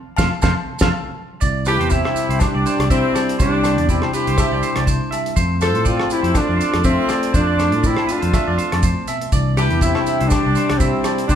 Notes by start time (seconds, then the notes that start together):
0.17 F2 C3 F3 A3 A4 C5 F5, kick, snare, low agogo, maracas
0.42 F2 C3 F3 A3 A4 C5 F5, kick, snare, low agogo, maracas
0.79 F2 C3 F3 A3 A4 C5 F5, kick, snare, low agogo, maracas
1.41 C2 C3 E4 D5, kick, closed hi-hat, maracas
1.65 G3 E4 G4 B4, cross-stick, closed hi-hat, low agogo, maracas
1.79 E2 C5, closed hi-hat
1.90 B3 C4 E4 G4 E5, kick, closed hi-hat, maracas
2.04 D4 E5, cross-stick, low agogo
2.16 muted clean electric guitar stroke, closed hi-hat, maracas
2.29 C2 C5, closed hi-hat
2.39 G3 D4 G4, kick, cross-stick, closed hi-hat, low agogo, maracas
2.55 C2 D5
2.66 D4 C5, closed hi-hat, maracas
2.78 C2 D5, cross-stick, closed hi-hat, low agogo
2.89 G3 C4 E4 E5, kick, closed hi-hat, maracas
3.14 G3 D5, cross-stick, closed hi-hat, low agogo, maracas
3.29 closed hi-hat
3.39 C2 C3 G3 D4 E4 G4 C5, kick, closed hi-hat, maracas
3.53 C5
3.64 G3 C5, cross-stick, closed hi-hat, low agogo, maracas
3.78 E2 D5, closed hi-hat
3.89 C4 D4 E4 G4 D5, kick, closed hi-hat, maracas
4.02 C5, cross-stick, low agogo
4.13 D4 E4 G4 B4 C5, closed hi-hat, maracas
4.27 C2 C5, closed hi-hat
4.38 G3 E5, kick, cross-stick, closed hi-hat, low agogo, maracas
4.51 C2 D5
4.62 D4 C5, closed hi-hat, maracas
4.76 C2 D5, cross-stick, closed hi-hat, low agogo
4.86 E4 C5, kick, closed hi-hat, maracas
5.11 G3 E5, closed hi-hat, low agogo, maracas
5.26 closed hi-hat
5.36 F2 F3 A3 C4 F4 C5, kick, closed hi-hat, maracas
5.61 A3 F4 A4 C5, cross-stick, closed hi-hat, low agogo, maracas
5.75 A2 C5, closed hi-hat
5.85 C4 F4 A4 D5, kick, closed hi-hat, maracas
5.97 D5, cross-stick, low agogo
6.10 C4 E4 G4, closed hi-hat, maracas
6.22 F2 C5, closed hi-hat
6.34 A3 D4 F4, kick, cross-stick, closed hi-hat, low agogo, maracas
6.47 F2 D5
6.57 C4 C5
6.61 closed hi-hat, maracas
6.72 F2 D5, cross-stick, closed hi-hat, low agogo
6.84 A3 C4 F4 E5, kick, closed hi-hat, maracas
7.08 A3 D5, cross-stick, closed hi-hat, low agogo, maracas
7.23 closed hi-hat
7.33 F2 A3 D4 F4 C5, kick, closed hi-hat, maracas
7.37 F4
7.47 D5
7.58 A3 C5, cross-stick, closed hi-hat, low agogo, maracas
7.72 A2 D5, closed hi-hat
7.83 C4 E4 A4 D5, kick, closed hi-hat, maracas
7.87 C4
7.97 C5, cross-stick, low agogo
8.07 C4 F4 B4, closed hi-hat, maracas
8.12 D4 A4
8.21 F2 C5, closed hi-hat
8.32 A3 E5, kick, cross-stick, closed hi-hat, low agogo, maracas
8.47 F2 D5
8.58 C4 C5, closed hi-hat, maracas
8.72 F2 D5, cross-stick, closed hi-hat, low agogo
8.83 A2 C5, kick, closed hi-hat, maracas
9.07 B2 E5, closed hi-hat, low agogo, maracas
9.21 closed hi-hat
9.32 C2 C3 E3 D4 E4 D5, muted clean electric guitar stroke, kick, closed hi-hat, maracas
9.57 G3 E4 G4 B4, cross-stick, closed hi-hat, low agogo, maracas
9.70 E2, muted clean electric guitar stroke, closed hi-hat
9.81 C4 D4 E4 G4 E5, kick, closed hi-hat, maracas
9.95 E5, cross-stick, low agogo
10.05 D4, closed hi-hat, maracas
10.21 C2 C5, closed hi-hat
10.28 G3 D4 G4, kick, maracas
10.32 cross-stick, closed hi-hat, low agogo
10.45 C2 D5
10.55 D4 C5, closed hi-hat, maracas
10.69 C2 D5, cross-stick, closed hi-hat, low agogo
10.76 G3 C4 E4, kick, closed hi-hat
10.80 E5, muted clean electric guitar stroke, maracas
11.04 D5, cross-stick, closed hi-hat, low agogo, maracas
11.18 closed hi-hat
11.26 C2 C3 D4 G4, muted clean electric guitar stroke, kick, closed hi-hat, maracas
11.30 G3 C5